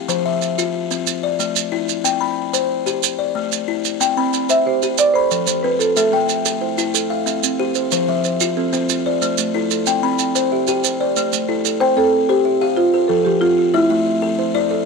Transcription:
0.09 0.41 F3 medium
0.09 0.58 C5 medium
0.09 maracas medium
0.26 0.74 E5 medium
0.42 maracas medium
0.58 0.91 F4 medium
0.58 maracas medium
0.91 1.07 C4 medium
0.91 maracas soft
1.07 maracas medium
1.23 1.72 D5 medium
1.39 1.72 A3 medium
1.39 maracas medium
1.56 maracas medium
1.72 2.04 E4 medium
1.89 maracas medium
2.04 2.37 C4 medium
2.04 2.53 G5 medium
2.04 maracas medium
2.21 2.70 B5 medium
2.53 2.86 C5 medium
2.53 maracas medium
2.86 3.03 G4 medium
2.86 maracas medium
3.03 maracas medium
3.19 3.68 D5 medium
3.35 3.68 A3 medium
3.52 maracas medium
3.68 4.00 E4 medium
3.85 maracas medium
4.00 4.33 C4 medium
4.00 4.50 G5 medium
4.00 maracas medium
4.17 4.50 C4 medium
4.17 4.66 B5 medium
4.33 4.82 G5 medium
4.33 maracas medium
4.49 4.82 C5 medium
4.49 4.65 E5 loud
4.49 maracas medium
4.66 4.98 G4 medium
4.66 5.00 C5 medium
4.82 4.99 G4 medium
4.82 maracas medium
4.98 5.15 C5 medium
4.98 5.15 D5 loud
4.98 maracas medium
5.14 5.30 A4 medium
5.14 5.44 C5 medium
5.14 5.64 B5 medium
5.31 5.64 F3 medium
5.31 5.80 A4 medium
5.31 maracas medium
5.47 5.80 F3 medium
5.47 5.64 C5 medium
5.47 maracas medium
5.63 5.97 C4 medium
5.63 5.79 F4 medium
5.63 5.80 B4 medium
5.79 6.13 F4 medium
5.79 5.95 A4 medium
5.79 maracas medium
5.97 6.29 A3 medium
5.97 6.90 A4 medium
5.97 6.45 E5 medium
5.97 maracas medium
6.12 6.45 A3 medium
6.12 6.62 G5 medium
6.28 6.77 E5 medium
6.28 maracas medium
6.46 6.78 A4 medium
6.46 maracas medium
6.61 6.94 E4 medium
6.61 7.10 C5 medium
6.78 6.94 E4 medium
6.78 maracas medium
6.94 7.10 A4 medium
6.94 maracas medium
7.10 7.25 E5 medium
7.10 7.59 F5 medium
7.26 7.59 C4 medium
7.26 7.75 E5 medium
7.26 maracas medium
7.43 7.76 C4 medium
7.43 maracas medium
7.59 7.92 G4 medium
7.59 7.74 C5 medium
7.75 8.08 C5 medium
7.75 maracas medium
7.92 8.24 F3 medium
7.92 8.41 C5 medium
7.92 maracas medium
8.08 8.41 F3 medium
8.08 8.57 E5 medium
8.24 8.72 C5 medium
8.24 maracas medium
8.41 8.73 F4 medium
8.41 maracas medium
8.57 8.89 C4 medium
8.57 9.05 A4 medium
8.73 8.89 C4 medium
8.73 9.05 C5 medium
8.73 maracas medium
8.89 9.06 F4 medium
8.89 maracas medium
9.06 9.21 C5 medium
9.06 9.54 D5 medium
9.22 9.54 A3 medium
9.22 9.70 C5 medium
9.22 maracas medium
9.38 9.71 A3 medium
9.38 maracas medium
9.54 9.87 E4 medium
9.54 9.70 A4 medium
9.71 10.03 A4 medium
9.71 maracas medium
9.86 10.19 C4 medium
9.86 10.35 G5 medium
9.86 maracas medium
10.03 10.35 C4 medium
10.03 10.52 B5 medium
10.19 10.67 G5 medium
10.19 maracas medium
10.35 10.68 C5 medium
10.35 maracas medium
10.52 10.84 G4 medium
10.52 11.00 E5 medium
10.67 10.84 G4 medium
10.67 11.17 G5 medium
10.67 maracas medium
10.84 10.99 C5 medium
10.84 maracas medium
11.00 11.15 C5 medium
11.00 11.49 D5 medium
11.16 11.49 A3 medium
11.16 11.65 C5 medium
11.16 maracas medium
11.33 11.65 A3 medium
11.33 maracas medium
11.49 11.81 E4 medium
11.49 11.64 A4 medium
11.65 11.97 A4 medium
11.65 maracas medium
11.80 12.13 C4 medium
11.80 11.97 C5 loud
11.80 11.96 G5 medium
11.97 12.29 C4 medium
11.97 12.30 A4 medium
11.97 12.45 G5 medium
12.13 12.60 G5 medium
12.29 12.59 G4 loud
12.29 12.61 C5 medium
12.45 12.77 G4 medium
12.45 12.93 E5 medium
12.61 12.77 G4 medium
12.61 12.94 F5 medium
12.61 13.10 G5 medium
12.77 13.10 F4 medium
12.77 12.93 C5 medium
12.94 13.42 A4 medium
12.94 13.42 C5 medium
13.08 13.42 F3 medium
13.08 13.24 A4 medium
13.08 13.58 A4 medium
13.25 13.58 F3 medium
13.25 13.42 G4 medium
13.41 13.74 C4 medium
13.41 13.75 F4 medium
13.58 13.90 F4 medium
13.74 14.06 A3 medium
13.74 14.34 E4 medium
13.74 13.89 E5 medium
13.90 14.22 A3 medium
13.90 14.38 E5 medium
14.06 14.53 E5 medium
14.22 14.54 A4 medium
14.39 14.71 E4 medium
14.39 14.85 C5 medium
14.54 14.71 E4 medium
14.54 14.85 D5 medium
14.54 14.85 E5 medium
14.71 14.85 A4 medium

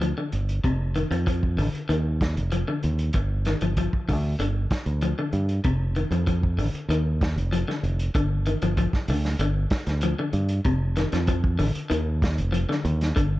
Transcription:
0.00 0.12 D2 medium
0.00 0.13 F3 medium
0.00 closed hi-hat medium
0.18 0.40 D3 medium
0.32 0.59 G1 medium
0.32 closed hi-hat soft
0.49 closed hi-hat soft
0.64 1.03 F1 medium
0.64 0.87 C3 medium
0.64 kick medium
0.64 closed hi-hat medium
0.95 1.07 D#3 medium
0.95 closed hi-hat soft
1.11 1.59 F2 medium
1.11 1.23 F3 medium
1.11 closed hi-hat soft
1.27 1.50 F3 medium
1.27 kick medium
1.27 closed hi-hat medium
1.43 kick medium
1.57 1.71 A1 medium
1.57 1.81 D3 medium
1.57 open hi-hat medium
1.75 closed hi-hat soft
1.89 2.38 D#2 medium
1.89 2.12 D#3 medium
1.89 closed hi-hat medium
2.21 kick medium
2.21 snare medium
2.21 closed hi-hat soft
2.36 2.62 F1 medium
2.36 closed hi-hat soft
2.52 2.64 F3 medium
2.52 closed hi-hat medium
2.68 2.91 D3 medium
2.83 3.09 D#2 medium
2.83 closed hi-hat soft
2.99 closed hi-hat soft
3.13 3.53 G1 medium
3.13 muted clean electric guitar stroke medium
3.13 kick medium
3.13 closed hi-hat medium
3.45 3.58 D#3 medium
3.45 snare soft
3.45 closed hi-hat soft
3.61 3.87 G1 medium
3.61 3.73 F3 medium
3.61 closed hi-hat soft
3.77 4.00 F3 medium
3.77 kick medium
3.77 closed hi-hat medium
3.93 muted fingered electric bass stroke soft
3.93 kick medium
4.09 4.34 D2 medium
4.09 4.31 D3 medium
4.09 kick medium
4.09 open hi-hat medium
4.39 4.65 G1 medium
4.39 4.63 D3 medium
4.39 closed hi-hat medium
4.71 kick medium
4.71 snare medium
4.71 closed hi-hat soft
4.86 5.12 D2 medium
4.86 closed hi-hat soft
5.01 5.14 F3 medium
5.01 closed hi-hat medium
5.19 5.41 D3 medium
5.33 5.59 G2 medium
5.33 closed hi-hat soft
5.49 closed hi-hat soft
5.64 6.03 F1 medium
5.64 5.88 C3 medium
5.64 kick medium
5.64 closed hi-hat medium
5.96 6.08 D#3 medium
5.96 closed hi-hat soft
6.11 6.59 F2 medium
6.11 6.23 F3 medium
6.11 closed hi-hat soft
6.27 6.50 F3 medium
6.27 kick medium
6.27 closed hi-hat medium
6.43 kick medium
6.58 6.71 A1 medium
6.58 6.81 D3 medium
6.58 open hi-hat medium
6.74 muted fingered electric bass stroke soft
6.74 closed hi-hat soft
6.89 7.37 D#2 medium
6.89 7.13 D#3 medium
6.89 closed hi-hat medium
7.21 kick medium
7.21 snare medium
7.21 closed hi-hat soft
7.36 7.62 F1 medium
7.36 closed hi-hat medium
7.53 7.64 F3 medium
7.53 closed hi-hat medium
7.68 7.91 D3 medium
7.68 snare soft
7.83 8.09 F1 medium
7.83 closed hi-hat soft
7.99 closed hi-hat medium
8.15 8.54 G1 medium
8.15 8.38 D3 medium
8.15 kick medium
8.15 closed hi-hat medium
8.46 8.58 D#3 medium
8.46 closed hi-hat medium
8.62 8.88 G1 medium
8.62 8.74 F3 medium
8.62 closed hi-hat soft
8.77 9.01 F3 medium
8.77 kick medium
8.77 closed hi-hat medium
8.93 muted fingered electric bass stroke soft
8.93 kick medium
8.93 snare soft
9.08 9.34 D2 medium
9.08 9.32 D3 medium
9.08 open hi-hat medium
9.25 snare soft
9.39 9.65 G1 medium
9.39 9.63 D3 medium
9.39 closed hi-hat medium
9.70 kick medium
9.70 snare medium
9.70 closed hi-hat soft
9.86 10.13 D2 medium
9.86 snare soft
9.86 closed hi-hat soft
10.01 10.14 F3 medium
10.01 closed hi-hat medium
10.19 10.42 D3 medium
10.33 10.59 G2 medium
10.33 closed hi-hat soft
10.49 closed hi-hat soft
10.65 11.04 F1 medium
10.65 10.88 C3 medium
10.65 kick medium
10.65 closed hi-hat medium
10.96 11.08 D#3 medium
10.96 snare soft
10.96 closed hi-hat soft
11.12 11.61 F2 medium
11.12 11.24 F3 medium
11.12 snare soft
11.12 closed hi-hat soft
11.27 11.51 F3 medium
11.27 kick medium
11.27 closed hi-hat medium
11.44 kick medium
11.59 11.73 A1 medium
11.59 11.82 D3 medium
11.59 open hi-hat medium
11.75 muted fingered electric bass stroke soft
11.75 closed hi-hat medium
11.90 12.40 D#2 medium
11.90 12.13 D#3 medium
11.90 closed hi-hat medium
12.22 kick medium
12.22 snare medium
12.22 closed hi-hat medium
12.38 12.64 F1 medium
12.38 closed hi-hat medium
12.52 12.64 F3 medium
12.52 closed hi-hat medium
12.69 12.92 D3 medium
12.69 snare soft
12.85 13.11 D#2 loud
12.85 closed hi-hat soft
13.01 snare soft
13.01 closed hi-hat soft
13.16 13.40 G1 medium
13.16 13.39 D3 medium
13.16 kick medium
13.16 closed hi-hat medium

